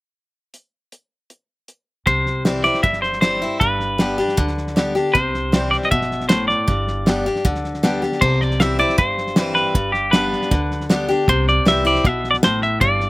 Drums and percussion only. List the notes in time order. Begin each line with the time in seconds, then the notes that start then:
0.54 closed hi-hat
0.92 closed hi-hat
1.30 closed hi-hat
1.68 closed hi-hat
2.07 kick, snare
2.26 snare
2.45 snare, hi-hat pedal
2.65 snare
2.74 snare
2.84 kick, snare
2.93 snare
3.03 snare
3.13 snare
3.22 snare, hi-hat pedal
3.41 snare
3.61 kick, snare
3.80 snare
3.99 snare, hi-hat pedal
4.19 snare
4.28 snare
4.38 kick, snare
4.48 snare
4.57 snare
4.67 snare
4.77 snare, hi-hat pedal
4.96 snare
5.15 kick, snare
5.34 snare
5.53 snare, hi-hat pedal
5.73 snare
5.82 snare
5.92 kick, snare
6.01 snare
6.11 snare
6.20 snare
6.30 snare, hi-hat pedal
6.49 snare
6.68 kick, snare
6.87 snare
7.07 snare, hi-hat pedal
7.26 snare
7.36 snare
7.45 kick, snare
7.55 snare
7.64 snare
7.74 snare
7.83 snare, hi-hat pedal
8.03 snare
8.12 snare
8.22 kick, snare, crash
8.41 snare
8.51 snare
8.60 snare, hi-hat pedal
8.80 snare
8.89 snare
8.98 kick, snare
9.18 snare
9.27 snare
9.36 snare, hi-hat pedal
9.56 snare
9.75 kick, snare
9.94 snare
10.13 snare, hi-hat pedal
10.33 snare
10.42 snare
10.51 kick, snare
10.71 snare
10.81 snare
10.90 snare, hi-hat pedal
11.09 snare
11.28 kick, snare
11.48 snare
11.66 snare, hi-hat pedal
11.86 snare
11.95 snare
12.05 kick, snare
12.24 snare
12.34 snare
12.43 snare, hi-hat pedal
12.62 snare
12.81 kick, snare
13.00 snare